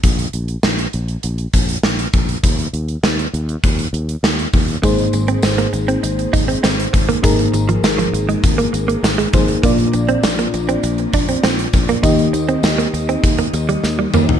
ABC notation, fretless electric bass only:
X:1
M:4/4
L:1/8
Q:1/4=100
K:Ab
V:1 name="Fretless electric bass" clef=bass
B,,, B,,, B,,, B,,, B,,, B,,, B,,, B,,, | E,, E,, E,, E,, E,, E,, E,, E,, | A,,, A,,, A,,, A,,, A,,, A,,, A,,, A,,, | A,,, A,,, A,,, A,,, A,,, A,,, A,,, A,,, |
B,,, B,,, B,,, B,,, B,,, B,,, B,,, B,,, | E,, E,, E,, E,, E,, E,, E,, E,, |]